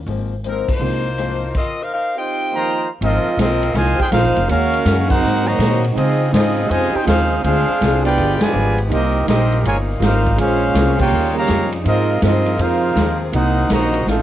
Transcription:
0.06 G#1 G#2 F3 A#3 C4, open hi-hat
0.44 G#2 F3 A#3 C4, closed hi-hat
0.48 F3 C4 D#4 A#4
0.68 A#3, muted upright bass stroke, kick, crash
0.72 D#4 F4 C5
0.80 C2 G#2 F3 G#3 A#3 C4 D#4 F4
0.84 C4
1.18 G#2 F3 A#3 C4, cross-stick, closed hi-hat
1.54 C4 F4 A#4 D#5, kick, crash
1.81 D#4 A#4 C5 F5
1.93 D#4 A#4 C5 F5
2.16 C4 D#4 F4 G4 C5 D#5 G5
2.52 D#3 F3 A#3 F4 C5 D#5 A#5
3.01 G#1 G#2 F3 G#3 A#3 C4 D#4 F4 A#4 D#5, ride
3.24 muted upright bass stroke
3.37 B1 G#2 F3 A#3 C4 D#4 F4 A#4 D#5, snare, hi-hat pedal, ride
3.63 ride
3.74 C2 G#2 D#3 F3 G#3 A#3 C4 F4 C5 D#5 G#5, snare, ride
3.98 D#4 G4 G#4 C5 G5, kick
4.10 A#1 G#2 F3 A#3 C4 D#4 F4 A#4 C5 F5, snare, hi-hat pedal, ride
4.24 G#1
4.36 F1, ride
4.47 D#2 C#3 D#3 F#3 G#3 A#3 C#4 F#4 A#4 F5, ride
4.52 C#4 F#4
4.74 ride
4.85 F#2 D#3 G#3 C#4 F#4, snare, hi-hat pedal, ride
5.08 C4 D#4 F#4 A#4 C5 F#5, kick, crash
5.22 G#2 C3 F#3 A#3 C4 F#4
5.44 D#3 F#3 A#3 F#4 C5 D#5 A#5
5.59 G#2 A#2 F#3 A#3 C4, snare, hi-hat pedal, ride
5.84 ride
5.92 C#3 F3 G#3 C4 D#4
5.96 C#3 F3 C4 D#4 F4 G#4 D#5, ride
6.30 G#2 C#3 F3 G#3 C4 D#4 F4 G#4, snare, hi-hat pedal, ride
6.34 C4 D#4 D#5
6.67 F2 C3 C#3 F3 G#3 F4 C5 D#5 G#5, ride
6.71 F3 C4 D#4
6.92 G4, muted upright bass stroke
6.96 D#4 G#4 C5 G5
7.04 D#2 C#3 G#3 C4 F4 G#4 C5 F5, snare, hi-hat pedal, ride
7.08 F3 C4 D#4
7.42 D2 D3 G#3 C4 D4 F4 G#4 C5 F5, ride
7.47 G#4
7.69 muted upright bass stroke
7.81 C2 D3 C4 F4 G#4, snare, hi-hat pedal, ride
8.03 B3 D4 F4 G4 B4 D5 G5, ride
8.17 G1 F3 G3 B3 F4 G4 G#4, ride
8.39 D3 F3 G#3 F4 B4 D5 G#5, muted upright bass stroke, snare, ride
8.53 G#1 G3 B3 F4 G#4, hi-hat pedal
8.78 ride
8.88 C2 A#2 C3 G3 A#3 D#4 G4 A#4 D#5, ride
8.92 C4 G4
9.25 A#1 C3 G3 A#3 C4 D#4 G4 A#4 D#5, snare, hi-hat pedal, ride
9.29 A#3 D#4 G4
9.52 ride
9.62 G1 G#3, ride
9.66 C3 A#3 D#4 F4 G4 A#4 C#5 G#5
9.99 G#1 C3 G3 A#3 D#4 F4 A#4 C5, snare, hi-hat pedal, ride
10.03 G4 F5
10.26 kick, ride
10.35 A#1 G#3 A#3 C#4 F4, ride
10.39 C#4 G#4 C5 F5
10.74 C2 A#3 C#4 G#4 C5, snare, hi-hat pedal, ride
10.97 A#3 C#4 F4 G4 A#4 C#5 G5, kick, crash
11.09 D#2 C#3 D#3 F3 G3 C#4 D#4
11.13 F4
11.33 C#3 G3 A#3
11.37 G4 C#5 F5 A#5
11.48 F2 D#3 G3 C#4 F4, snare, hi-hat pedal, ride
11.72 ride
11.82 G#2 C3 F3 A#3 C4 D#4 F4 G#4, ride
11.86 F3 A#3 C4 F4 A#4 D#5
12.21 G2 G#2 F3 A#3 C4 D#4 F4 A#4 D#5, snare, hi-hat pedal, ride
12.25 C4
12.46 ride
12.56 F2 G#2 F3 C4 F4, ride
12.61 A#3 C4 D#4 A#4 C5 F5
12.96 D#2 G#2 F3 A#3 C4, snare, hi-hat pedal, ride
13.32 C2 C3 F#3 A#3 D#4 F#4 A#4 C5 F#5, ride
13.37 D#4
13.69 A#1 C3 D#3 F#3 A#3 D#4 F#4 C5 D#5 A#5, snare, hi-hat pedal, ride
13.94 ride
14.06 A1 F2 C#3 D#3 F3 A3 C4 D#4 F4 A4 C5 F5, snare
14.10 C#4

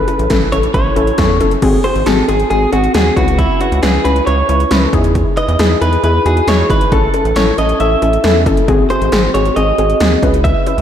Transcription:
Already playing: B4
0.08 C#4 E4 A4, closed hi-hat
0.19 A1, closed hi-hat
0.30 A1 C#4 E4 A4, kick, snare, closed hi-hat
0.52 A1 C#4 E4 A4 C#5, closed hi-hat
0.63 closed hi-hat
0.74 A1 C#4 E4 A4 C#5, kick, closed hi-hat
0.96 A1 C#4 E4 A4, closed hi-hat
1.07 closed hi-hat
1.18 E2 C#4 E4 A4, kick, snare, closed hi-hat
1.40 F#1 C#4 E4 A4, closed hi-hat
1.51 closed hi-hat
1.62 G#1 C4 F#4 G#4, kick, closed hi-hat, crash
1.84 C4 F#4 G#4 C5, closed hi-hat
1.95 G#1, closed hi-hat
2.06 G#1 C4 F#4 G#4 A4, snare, closed hi-hat
2.28 G#1 C4 F#4 G#4, closed hi-hat
2.40 closed hi-hat
2.50 G#1 C4 F#4 G#4, closed hi-hat
2.73 G#1 C4 F#4 G#4, closed hi-hat
2.84 closed hi-hat
2.94 D#2 C4 F#4 G#4, snare, closed hi-hat
3.16 C#2 C#4 E4 F#4 B4, kick, closed hi-hat
3.28 closed hi-hat
3.38 E4, kick, closed hi-hat
3.61 C#4 E4 F#4 B4, closed hi-hat
3.72 C#2, closed hi-hat
3.83 C#2 C#4 E4 G#4 B4, snare, closed hi-hat
4.05 C#2 C#4 E4 B4, closed hi-hat
4.16 closed hi-hat
4.27 C#2 C#4 E4 B4 C#5, closed hi-hat
4.49 C#2 C#4 E4 B4, closed hi-hat
4.60 closed hi-hat
4.71 C#2 C#4 E4 B4, snare, closed hi-hat
4.93 E2 D#4 E4 G#4, kick, closed hi-hat
5.04 closed hi-hat
5.15 kick, closed hi-hat
5.37 D#4 E4 B4 D#5, closed hi-hat
5.48 E2, closed hi-hat
5.59 E2 D#4 E4 G#4, snare, closed hi-hat
5.81 E2 D#4 E4 G#4 B4, closed hi-hat
5.93 closed hi-hat
6.03 E2 D#4 E4 G#4 B4, closed hi-hat
6.25 E2 D#4 E4 F#4 G#4, closed hi-hat
6.37 closed hi-hat
6.47 E2 D#4 E4 G#4 C#5, snare, closed hi-hat
6.70 G#1 D#4 E4 B4, kick, closed hi-hat
6.81 closed hi-hat
6.92 A1 C#4 E4 A4, kick, closed hi-hat
7.14 C#4 E4 A4, closed hi-hat
7.25 A1, closed hi-hat
7.36 A1 C#4 E4 A4 C#5, snare, closed hi-hat
7.58 A1 C#4 E4 A4 D#5, closed hi-hat
7.69 closed hi-hat
7.80 A1 C#4 E4 A4 E5, closed hi-hat
8.02 A1 C#4 E4 A4, closed hi-hat
8.13 closed hi-hat
8.24 E2 C#4 E4 A4, snare, closed hi-hat
8.46 F#1 C#4 E4 A4, kick, closed hi-hat
8.57 closed hi-hat
8.68 G#1 C4 F#4 G#4, kick, closed hi-hat
8.90 C4 F#4 G#4 C5, closed hi-hat
9.01 G#1, closed hi-hat
9.12 G#1 C4 F#4 G#4, snare, closed hi-hat
9.34 G#1 C4 F#4 G#4 C#5, closed hi-hat
9.45 closed hi-hat
9.56 G#1 C4 F#4 G#4 D#5, closed hi-hat
9.78 G#1 C4 F#4 G#4, closed hi-hat
9.90 closed hi-hat
10.00 D#2 C4 F#4 G#4, snare, closed hi-hat
10.23 C#2 C#4 E4 B4, kick, closed hi-hat
10.34 closed hi-hat
10.44 E5, kick, closed hi-hat
10.66 C#4 E4 B4, closed hi-hat
10.78 C#2, closed hi-hat

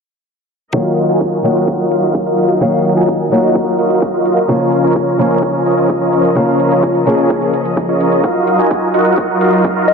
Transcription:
0.73 D#3 F#3 A#3 D#4 F4 F#4 A#4 D#5 F5, kick, closed hi-hat
0.97 closed hi-hat
1.09 F4 F#4 A#4 D#5 G#5, closed hi-hat
1.21 kick, closed hi-hat
1.43 D#3 F#3 A#3 F4 F#4 A#4 D#5 F#5, closed hi-hat
1.56 closed hi-hat
1.68 kick, closed hi-hat
1.91 F4 F#4 A#4 D#5 F5, closed hi-hat
2.03 closed hi-hat
2.15 kick, closed hi-hat
2.26 F4 F#4 A#4 D#5 F5
2.38 closed hi-hat
2.50 closed hi-hat
2.60 D#3 F#3 A#3 F4 F#4 A#4 D#5 F5, kick, closed hi-hat
2.85 closed hi-hat
2.97 F4 F#4 A#4 D#5 G#5, closed hi-hat
3.08 kick, closed hi-hat
3.31 D#3 F#3 A#3 F4 F#4 A#4 D#5 F#5, closed hi-hat
3.43 closed hi-hat
3.55 kick, closed hi-hat
3.79 F4 F#4 A#4 D#5 F5, closed hi-hat
3.90 closed hi-hat
4.02 kick, closed hi-hat
4.14 F4 F#4 A#4 D#5 F5
4.25 closed hi-hat
4.37 closed hi-hat
4.48 C#3 F3 A#3 C#4 F4 A#4 C#5 F5, kick, closed hi-hat
4.72 closed hi-hat
4.84 C#4 F4 A#4 C#5 A#5, closed hi-hat
4.96 kick, closed hi-hat
5.18 C#3 F3 A#3 C#4 F4 A#4 C#5 G#5, closed hi-hat
5.31 closed hi-hat
5.43 kick, closed hi-hat
5.66 C#4 F4 A#4 C#5 D#5, closed hi-hat
5.78 closed hi-hat
5.89 kick, closed hi-hat
6.01 C#4 F4 A#4 C#5 D#5
6.13 closed hi-hat
6.25 closed hi-hat
6.35 C#3 F3 A#3 C#4 F4 A#4 C#5 F5, kick, closed hi-hat
6.60 closed hi-hat
6.71 C#4 F4 A#4 C#5 A#5, closed hi-hat
6.83 kick, closed hi-hat
6.95 closed hi-hat
7.05 C#3 F3 A#3 C#4 F4 G#4 A#4 C#5 G#5, closed hi-hat
7.18 closed hi-hat
7.30 kick, closed hi-hat
7.42 closed hi-hat
7.54 closed hi-hat
7.65 closed hi-hat
7.77 kick, closed hi-hat
7.89 C#4 F4 A#4 C#5 D#5
8.00 closed hi-hat
8.12 closed hi-hat
8.24 F#3 D#4 F4 F#4 A#4 D#5 F5, kick, closed hi-hat
8.47 closed hi-hat
8.59 F4 F#4 A#4 D#5 G#5, closed hi-hat
8.71 kick, closed hi-hat
8.94 F4 F#4 A#4 D#5 F#5, closed hi-hat
9.06 closed hi-hat
9.18 kick, closed hi-hat
9.41 F4 F#4 A#4 D#5 F5, closed hi-hat
9.53 closed hi-hat
9.64 kick, closed hi-hat
9.76 F4 F#4 A#4 D#5 F5
9.88 D#5, closed hi-hat

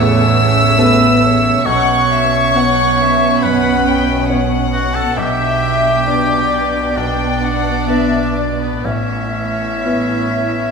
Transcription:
Already playing: A1 E2 A2 C#3 B3 C#4 A4 C#5 E5 E6
0.78 B3 C#4 A4 B4
1.24 C#5
1.66 B1 B2 B3 C#4 C#5 F#5 C#6
2.13 E5
2.55 B3 C#4 C#5 F#5
3.00 E5
3.42 F#2 B4 F#5 B5
3.87 G5
4.29 B3 C#4 C#5 F#5
4.73 F#4 F#5
4.94 A4 A5
5.16 B1 B2 B3 D4 G4 E5 G5
6.07 B3 D4 B4 D5
6.96 B1 D4 D5 G5
7.42 F#5
7.88 B3 D4 B4 E5
8.36 D5
8.60 B3 B4
8.85 A1 A2 B3 C#4 E4 C#5 E5
9.85 B3 E4 B4

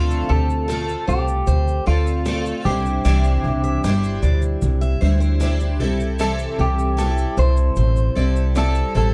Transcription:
Already playing: D2 D3 A3 C4 F4 A4
0.11 shaker
0.29 D2 G4 A4, cajon bass
0.50 cajon slap, shaker
0.68 A3 C4 F4 A4, cajon slap, shaker
0.89 shaker
1.07 C2 G4 C5, cajon bass, shaker
1.28 cajon slap, shaker
1.47 D2 C5, cajon bass, shaker
1.68 shaker
1.86 D2 C4 F4 A4 D5
2.07 shaker
2.25 A3 C4 F4 A4 D5, cajon slap, shaker
2.46 shaker
2.65 C2 G3 D4 E4 G4 C5, cajon bass
2.85 cajon slap, shaker
3.05 C2 C3 E3 G3 D4 E4 C5 D5, shaker
3.24 shaker
3.44 C2, cajon bass
3.64 E5, cajon slap, shaker
3.84 G1 G3 D4 E4 C5, cajon slap, shaker
4.04 shaker
4.22 D2 D5, cajon bass, shaker
4.42 cajon slap, shaker
4.62 C2, cajon bass, shaker
4.81 E5, shaker
5.01 D2 G3 D4 E4 C5, cajon slap
5.20 C5, shaker
5.40 G3 D4 E4 C5, cajon slap, shaker
5.60 shaker
5.80 C2 G3 C4 E4 A4, cajon bass
6.00 cajon slap, shaker
6.19 C3 E3 G3 C4 E4 A4, cajon slap, shaker
6.39 shaker
6.59 C2 G4, cajon bass
6.78 cajon slap, shaker
6.97 G3 C4 E4 A4, cajon slap, shaker
7.18 shaker
7.37 C2 C5, cajon bass, shaker
7.57 cajon slap, shaker
7.76 A1 C5, cajon bass, shaker
7.96 shaker
8.15 C2 G3 C4 E4 A4 D5
8.36 shaker
8.55 G3 C4 E4 A4 D5, cajon slap, shaker
8.75 shaker
8.95 A1 G3 C4 E4 A4 C5, cajon bass

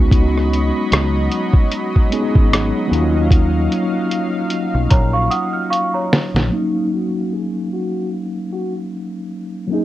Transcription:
Already playing: C#2 F#3 G#3 B3 C#4 D#4 F#4 D#5 B5 C#6
0.11 kick, closed hi-hat
0.38 cross-stick
0.54 closed hi-hat
0.92 C#2, cross-stick, closed hi-hat
1.31 closed hi-hat
1.53 kick
1.71 closed hi-hat
1.96 kick
2.10 G#3 B3 C#4 D#4 G#4, closed hi-hat
2.35 G#1, kick
2.53 cross-stick, closed hi-hat
2.88 D#2 F#3 A#3 C#4 F5
2.93 D#4 F4, closed hi-hat
3.31 kick, closed hi-hat
3.72 closed hi-hat
4.12 closed hi-hat
4.50 closed hi-hat
4.75 B1
4.90 A#1 C#5 A#5, kick, closed hi-hat
5.13 F5 C#6
5.30 F#5 D#6, closed hi-hat
5.53 F6
5.70 F5 C#6, closed hi-hat
5.94 C#5 A#5
6.13 snare, open hi-hat
6.34 A#1, snare
6.49 F#3 A#3 C#4
6.53 D#4 F5
6.94 F#4
7.33 G#4
7.73 F#4
8.53 F#4
9.67 F#3 A#3 C#4
9.72 D#4 G#4

